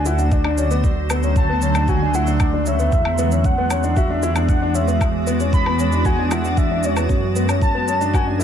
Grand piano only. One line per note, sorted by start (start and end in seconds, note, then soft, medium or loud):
0.06 0.16 E4 medium
0.18 0.39 D4 medium
0.45 0.55 D4 medium
0.58 0.68 C#4 medium
0.71 0.81 B3 medium
1.10 1.20 B3 medium
1.23 1.43 C#4 medium
1.49 1.59 B3 medium
1.63 1.72 C#4 medium
1.76 1.86 D4 medium
1.89 1.98 F#4 medium
2.02 2.12 D4 medium
2.15 2.25 E4 medium
2.27 2.47 D4 medium
2.53 2.64 D4 medium
2.67 2.77 C#4 medium
2.79 2.90 B3 medium
3.18 3.29 B3 medium
3.31 3.52 C#4 medium
3.58 3.68 B3 medium
3.70 3.81 C#4 medium
3.83 3.94 D4 medium
3.97 4.07 F#4 medium
4.10 4.20 D4 medium
4.23 4.33 E4 medium
4.36 4.56 D4 medium
4.62 4.72 D4 medium
4.75 4.85 C#4 medium
4.88 4.98 B3 medium
5.27 5.37 B3 medium
5.40 5.60 C#4 medium
5.66 5.76 B3 medium
5.79 5.90 C#4 medium
5.93 6.03 D4 medium
6.06 6.16 F#4 medium
6.18 6.29 D4 medium
6.32 6.42 E4 medium
6.45 6.65 D4 medium
6.71 6.81 D4 medium
6.84 6.94 C#4 medium
6.97 7.07 B3 medium
7.36 7.46 B3 medium
7.49 7.69 C#4 medium
7.74 7.85 B3 medium
7.88 7.98 C#4 medium
8.01 8.11 D4 medium
8.14 8.24 F#4 medium
8.27 8.37 D4 medium
8.39 8.44 E4 medium